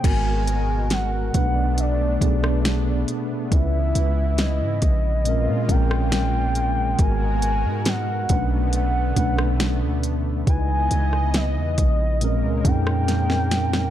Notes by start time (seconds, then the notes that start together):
0.03 G#1 G#2 B2 G#3 B3 F#4 A#4 G#5, kick, closed hi-hat, crash
0.47 closed hi-hat
0.90 F#5, snare, closed hi-hat
1.33 B1 B2 A3 B3 D4, kick, closed hi-hat
1.37 B4
1.78 D5, closed hi-hat
2.20 B1 B2 A3 B3 D4, kick, closed hi-hat
2.24 G#4
2.44 cross-stick
2.65 snare, closed hi-hat
3.08 closed hi-hat
3.50 C#2 C#3 E3 G#3 C#4 E4 B4 E5, kick, closed hi-hat
3.95 C#2, closed hi-hat
4.38 D#5, snare, closed hi-hat
4.61 G#2
4.82 A#1, kick, closed hi-hat
5.25 A#2 C#3 G#3 A#3 C4 C#4 F4, closed hi-hat
5.29 A#4
5.47 A#2
5.68 A#1 A#2 G#3 C4 C#4 G5, kick, closed hi-hat
5.72 A#4
5.91 cross-stick
6.12 snare, closed hi-hat
6.55 closed hi-hat
6.98 G#1 G#2 B2 G#3 B3 F#4 A#4 G#5, kick, closed hi-hat
7.02 A#4
7.42 closed hi-hat
7.65 G#2
7.85 F#5, snare, closed hi-hat
8.29 B1 B2 D3 A3 B3 C#4 D4, kick, closed hi-hat
8.33 B4
8.73 F#5, closed hi-hat
9.15 B1 B2 A3 C#4 D4, kick, closed hi-hat
9.20 B4
9.38 cross-stick
9.60 snare, closed hi-hat
9.82 D2
10.03 closed hi-hat
10.46 C#2 C#3 E3 G#3 B3 D#4 E4 D#5 G#5, kick, closed hi-hat
10.50 B4
10.91 C#2, closed hi-hat
11.13 cross-stick
11.34 D#5, snare, closed hi-hat
11.57 E2
11.78 A#1, kick, closed hi-hat
12.20 A#2 C#3 G#3 A#3 C4 C#4 A#4, closed hi-hat
12.24 A#4
12.43 C#2
12.64 F2 A#2 G#3 C4 C#4 G5, kick, closed hi-hat
12.68 D#4
12.87 cross-stick
13.08 snare, closed hi-hat
13.30 snare
13.51 snare, closed hi-hat
13.73 snare